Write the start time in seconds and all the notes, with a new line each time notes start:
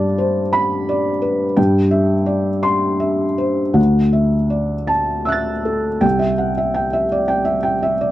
Already playing: G2 D5 A5
0.18 C5
0.53 B5
0.89 D5
1.22 B4
1.57 G2 G5
1.91 E5
2.26 D5
2.63 C6
3.00 E5
3.38 C5
3.73 D2 F#5
4.13 E5
4.50 D5
4.87 A5
5.25 E5 E6 F#6
5.32 A6
5.65 A4
6.01 C2 G5
6.19 E5
6.38 F#5
6.58 E5
6.74 G5
6.93 E5
7.12 D5
7.28 G5
7.45 E5
7.63 G5
7.83 E5
8.01 D5